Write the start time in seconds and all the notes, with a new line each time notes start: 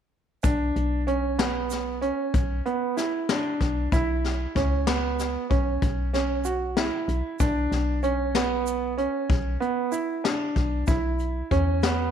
0.43 B1 D4, kick, closed hi-hat, shaker
0.76 B1, closed hi-hat
1.07 C#4, closed hi-hat
1.38 B3, snare, closed hi-hat
1.70 snare, closed hi-hat, shaker
2.01 C#4, closed hi-hat
2.34 B1, kick, closed hi-hat
2.66 B3, closed hi-hat
2.97 E4, snare, closed hi-hat, shaker
3.29 D4, snare, closed hi-hat
3.61 B1, kick, snare, closed hi-hat
3.92 B1 E4, kick, closed hi-hat, shaker
4.24 snare, closed hi-hat
4.55 C#2 C#4, kick, snare, closed hi-hat, shaker
4.87 B3, snare, closed hi-hat
5.19 snare, closed hi-hat, shaker
5.50 B1 C#4, kick, closed hi-hat
5.82 B1, kick, closed hi-hat
6.13 C#4, snare, closed hi-hat
6.45 F#4, closed hi-hat, shaker
6.77 E4, snare, closed hi-hat
7.08 B1, closed hi-hat
7.40 B1 D4, kick, closed hi-hat, shaker
7.71 B1, snare, closed hi-hat
8.03 C#4, closed hi-hat, shaker
8.35 B3, snare, closed hi-hat
8.67 closed hi-hat, shaker
8.98 C#4, closed hi-hat
9.30 B1, kick, closed hi-hat
9.60 B3, closed hi-hat
9.92 E4, closed hi-hat, shaker
10.24 D4, snare, closed hi-hat
10.56 B1, kick, snare, closed hi-hat
10.87 B1 E4, kick, closed hi-hat, shaker
11.19 closed hi-hat, shaker
11.51 E2 C#4, kick, closed hi-hat
11.82 B3, snare, closed hi-hat, shaker